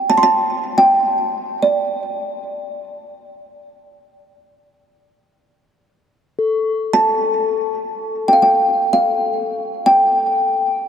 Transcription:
0.10 A5
0.18 C6
0.23 A5
0.78 G5
1.62 D5
6.39 A4
6.93 A5
8.28 G5
8.33 F5
8.42 G5
8.93 F5
9.86 G5

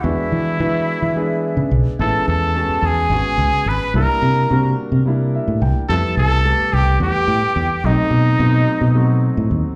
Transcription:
0.01 E2 G#3 B3 D4 E4 F#4 E5
0.32 E3
0.60 E3 G#3 B3 D4 F#4
1.02 E3
1.15 G#3 B3 D4 G#4
1.57 C#3
1.71 B1
1.99 A1 G#3 B3 C#4 E4 A4 A5
2.28 E2 A4 A5
2.55 G#3 B3 C#4 F#4
2.70 muted fingered electric bass stroke
2.82 E2 G#4
2.88 G#5
3.10 G#1 G#3 B3 C#4 F#4
3.38 C#2
3.66 G#1 B4
3.71 B5
3.94 C2 G3 A#3 D4 E4 A#4
3.98 A#5
4.22 C3
4.49 C3 G3 A#3 D4 F#4
4.92 C3
5.06 G3 A#3 D4 E4
5.35 E5
5.48 A2
5.62 C2 G5
5.89 F2 G3 A3 B3 E4 A4 A5
6.17 C2 A4 A5
6.45 G3 A3 B3 G4
6.59 muted fingered electric bass stroke
6.73 C2 G4 G5
7.00 E2 G3 A3 B3 G4 G5
7.28 A2
7.56 E2
7.84 B1 F#3 A3 C4 D#4 D#5
8.11 B2
8.39 B2 F#3 A3 C4 D#4
8.81 B2
8.95 F#3 A3 C4 F#4
9.37 A2
9.51 D#2

